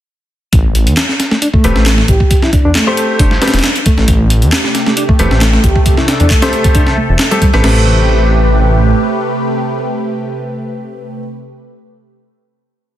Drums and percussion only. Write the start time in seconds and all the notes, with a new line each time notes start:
0.53 kick, closed hi-hat
0.75 closed hi-hat
0.87 closed hi-hat
0.97 snare, clap, closed hi-hat
1.09 snare
1.20 snare, closed hi-hat
1.31 snare
1.42 closed hi-hat
1.54 kick
1.64 closed hi-hat
1.76 snare
1.86 snare, clap, closed hi-hat
1.98 snare
2.08 kick, closed hi-hat
2.20 kick
2.31 kick, closed hi-hat
2.43 snare
2.53 kick, closed hi-hat
2.75 snare, clap, closed hi-hat
2.97 closed hi-hat
3.19 kick, closed hi-hat
3.31 snare
3.42 snare, closed hi-hat
3.48 snare, closed hi-hat
3.54 snare, closed hi-hat
3.59 snare, closed hi-hat
3.64 snare, clap, closed hi-hat
3.76 closed hi-hat
3.86 kick, closed hi-hat
3.98 snare
4.08 kick, closed hi-hat
4.30 closed hi-hat
4.42 closed hi-hat
4.52 snare, clap, closed hi-hat
4.64 snare
4.75 snare, closed hi-hat
4.87 snare
4.97 closed hi-hat
5.09 kick
5.19 closed hi-hat
5.31 snare
5.41 snare, clap, closed hi-hat
5.53 snare
5.64 kick, closed hi-hat
5.76 kick
5.86 kick, closed hi-hat
5.97 snare
6.08 snare, closed hi-hat
6.20 closed hi-hat
6.30 kick, clap, closed hi-hat
6.42 snare, closed hi-hat
6.53 closed hi-hat
6.64 kick, closed hi-hat
6.75 kick, closed hi-hat
6.87 snare
7.19 snare, clap, closed hi-hat
7.31 closed hi-hat
7.42 kick, closed hi-hat
7.54 snare
7.64 snare, crash